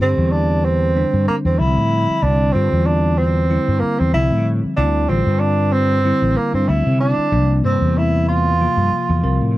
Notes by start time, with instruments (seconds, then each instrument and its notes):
0.01 fretless electric bass G2, tine electric piano D3 G3 C4 G4, tenor saxophone C4
0.18 fretless electric bass E2
0.32 tenor saxophone D4
0.65 tenor saxophone C4
0.96 tine electric piano D3 G3 C4 D4
1.13 fretless electric bass G2
1.28 tenor saxophone A#3, muted fretless electric bass stroke
1.45 fretless electric bass E2, tenor saxophone C4
1.59 fretless electric bass C2, tine electric piano D3 F3 G3 C4, tenor saxophone E4
1.77 fretless electric bass A2
2.09 muted fretless electric bass stroke
2.22 fretless electric bass C2, tine electric piano D3 G3 C4 D4, tenor saxophone D4
2.53 fretless electric bass G2, tine electric piano D3 G3 C4 F4, tenor saxophone C4
2.73 fretless electric bass E2
2.86 tenor saxophone D4
3.18 tenor saxophone C4
3.50 tine electric piano D3 G3 C4 E4
3.68 fretless electric bass G2
3.80 tenor saxophone A#3, muted fretless electric bass stroke
3.99 fretless electric bass E2, tenor saxophone C4
4.13 fretless electric bass C2, tine electric piano D3 F3 G3 C4, tenor saxophone E4
4.32 fretless electric bass A2
4.64 muted fretless electric bass stroke
4.76 fretless electric bass D2, tine electric piano D3 G3 C4 E4, tenor saxophone D4
5.09 fretless electric bass A1, tine electric piano D3 G3 C4 F4, tenor saxophone C4
5.27 fretless electric bass G2
5.40 tenor saxophone D4
5.72 tenor saxophone C4
6.04 tine electric piano D3 G3 C4 E4
6.22 fretless electric bass A1
6.36 tenor saxophone A#3
6.54 fretless electric bass G2, tenor saxophone C4
6.68 fretless electric bass D2, tine electric piano D3 G3 C4 E4, tenor saxophone E4
6.87 fretless electric bass C3
7.00 tenor saxophone D4
7.18 muted fretless electric bass stroke
7.32 fretless electric bass C2, tine electric piano C3 F3 A#3 D4
7.64 fretless electric bass G2, tine electric piano C3 G3 A#3 C4, tenor saxophone C4
7.81 fretless electric bass E2
7.98 tenor saxophone E4
8.28 tenor saxophone F4
8.60 tine electric piano C3 F3 A#3 F4
8.77 fretless electric bass G2
8.91 muted fretless electric bass stroke
9.09 fretless electric bass E2
9.23 fretless electric bass C2, tine electric piano C3 F3 C4 A#4
9.41 fretless electric bass A2